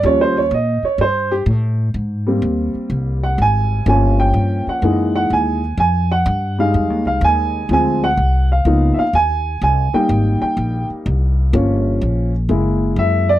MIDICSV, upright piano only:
0, 0, Header, 1, 2, 480
1, 0, Start_track
1, 0, Key_signature, -4, "major"
1, 0, Tempo, 478851
1, 46, Time_signature, 4, 2, 24, 8
1, 13424, End_track
2, 0, Start_track
2, 0, Title_t, "Upright piano"
2, 0, Program_c, 0, 0
2, 36, Note_on_c, 0, 53, 56
2, 42, Note_on_c, 0, 55, 49
2, 49, Note_on_c, 0, 61, 63
2, 56, Note_on_c, 0, 73, 84
2, 205, Note_off_c, 0, 73, 0
2, 213, Note_on_c, 0, 72, 71
2, 364, Note_off_c, 0, 72, 0
2, 381, Note_on_c, 0, 73, 72
2, 406, Note_off_c, 0, 53, 0
2, 409, Note_off_c, 0, 55, 0
2, 412, Note_off_c, 0, 61, 0
2, 527, Note_off_c, 0, 73, 0
2, 543, Note_on_c, 0, 75, 68
2, 846, Note_off_c, 0, 75, 0
2, 850, Note_on_c, 0, 73, 65
2, 999, Note_off_c, 0, 73, 0
2, 1015, Note_on_c, 0, 72, 78
2, 1318, Note_on_c, 0, 67, 87
2, 1320, Note_off_c, 0, 72, 0
2, 1413, Note_off_c, 0, 67, 0
2, 2271, Note_on_c, 0, 55, 56
2, 2281, Note_on_c, 0, 58, 44
2, 2282, Note_on_c, 0, 60, 54
2, 3243, Note_on_c, 0, 78, 69
2, 3393, Note_off_c, 0, 78, 0
2, 3426, Note_on_c, 0, 80, 83
2, 3830, Note_off_c, 0, 55, 0
2, 3835, Note_off_c, 0, 58, 0
2, 3836, Note_off_c, 0, 60, 0
2, 3858, Note_off_c, 0, 80, 0
2, 3875, Note_on_c, 0, 53, 57
2, 3887, Note_on_c, 0, 58, 48
2, 3887, Note_on_c, 0, 61, 58
2, 3900, Note_on_c, 0, 80, 71
2, 4201, Note_off_c, 0, 80, 0
2, 4207, Note_on_c, 0, 79, 85
2, 4649, Note_off_c, 0, 79, 0
2, 4701, Note_on_c, 0, 78, 66
2, 4795, Note_off_c, 0, 53, 0
2, 4801, Note_off_c, 0, 58, 0
2, 4801, Note_off_c, 0, 61, 0
2, 4841, Note_on_c, 0, 52, 55
2, 4843, Note_on_c, 0, 56, 47
2, 4847, Note_on_c, 0, 58, 44
2, 4855, Note_on_c, 0, 63, 51
2, 5137, Note_off_c, 0, 78, 0
2, 5167, Note_on_c, 0, 78, 83
2, 5315, Note_off_c, 0, 78, 0
2, 5343, Note_on_c, 0, 80, 71
2, 5601, Note_off_c, 0, 52, 0
2, 5602, Note_off_c, 0, 56, 0
2, 5604, Note_off_c, 0, 58, 0
2, 5608, Note_off_c, 0, 63, 0
2, 5777, Note_off_c, 0, 80, 0
2, 5812, Note_on_c, 0, 80, 78
2, 6117, Note_off_c, 0, 80, 0
2, 6130, Note_on_c, 0, 78, 84
2, 6572, Note_off_c, 0, 78, 0
2, 6600, Note_on_c, 0, 55, 47
2, 6605, Note_on_c, 0, 56, 43
2, 6615, Note_on_c, 0, 63, 58
2, 6615, Note_on_c, 0, 77, 81
2, 7055, Note_off_c, 0, 77, 0
2, 7087, Note_on_c, 0, 77, 79
2, 7236, Note_off_c, 0, 77, 0
2, 7262, Note_on_c, 0, 80, 85
2, 7678, Note_off_c, 0, 55, 0
2, 7681, Note_off_c, 0, 56, 0
2, 7686, Note_off_c, 0, 63, 0
2, 7698, Note_off_c, 0, 80, 0
2, 7723, Note_on_c, 0, 53, 57
2, 7727, Note_on_c, 0, 56, 46
2, 7733, Note_on_c, 0, 60, 57
2, 7749, Note_on_c, 0, 80, 72
2, 8048, Note_off_c, 0, 80, 0
2, 8056, Note_on_c, 0, 78, 87
2, 8088, Note_off_c, 0, 53, 0
2, 8090, Note_off_c, 0, 56, 0
2, 8093, Note_off_c, 0, 60, 0
2, 8497, Note_off_c, 0, 78, 0
2, 8539, Note_on_c, 0, 77, 69
2, 8678, Note_on_c, 0, 53, 46
2, 8685, Note_on_c, 0, 58, 44
2, 8688, Note_on_c, 0, 59, 43
2, 8691, Note_on_c, 0, 63, 56
2, 8962, Note_on_c, 0, 76, 54
2, 8979, Note_off_c, 0, 77, 0
2, 8986, Note_off_c, 0, 76, 0
2, 9010, Note_on_c, 0, 77, 76
2, 9046, Note_off_c, 0, 53, 0
2, 9049, Note_off_c, 0, 58, 0
2, 9051, Note_off_c, 0, 59, 0
2, 9053, Note_off_c, 0, 63, 0
2, 9159, Note_off_c, 0, 77, 0
2, 9172, Note_on_c, 0, 80, 86
2, 9614, Note_off_c, 0, 80, 0
2, 9658, Note_on_c, 0, 80, 74
2, 9959, Note_on_c, 0, 55, 54
2, 9963, Note_off_c, 0, 80, 0
2, 9964, Note_on_c, 0, 58, 49
2, 9968, Note_on_c, 0, 79, 80
2, 9975, Note_on_c, 0, 63, 52
2, 10414, Note_off_c, 0, 79, 0
2, 10442, Note_on_c, 0, 79, 78
2, 10891, Note_off_c, 0, 79, 0
2, 11521, Note_off_c, 0, 55, 0
2, 11523, Note_off_c, 0, 58, 0
2, 11529, Note_off_c, 0, 63, 0
2, 11559, Note_on_c, 0, 53, 55
2, 11566, Note_on_c, 0, 58, 49
2, 11574, Note_on_c, 0, 61, 59
2, 12325, Note_off_c, 0, 53, 0
2, 12328, Note_off_c, 0, 58, 0
2, 12333, Note_off_c, 0, 61, 0
2, 12520, Note_on_c, 0, 56, 57
2, 12523, Note_on_c, 0, 58, 43
2, 12531, Note_on_c, 0, 64, 54
2, 13019, Note_on_c, 0, 76, 79
2, 13285, Note_off_c, 0, 56, 0
2, 13287, Note_off_c, 0, 58, 0
2, 13291, Note_off_c, 0, 64, 0
2, 13324, Note_on_c, 0, 74, 88
2, 13325, Note_off_c, 0, 76, 0
2, 13424, Note_off_c, 0, 74, 0
2, 13424, End_track
0, 0, End_of_file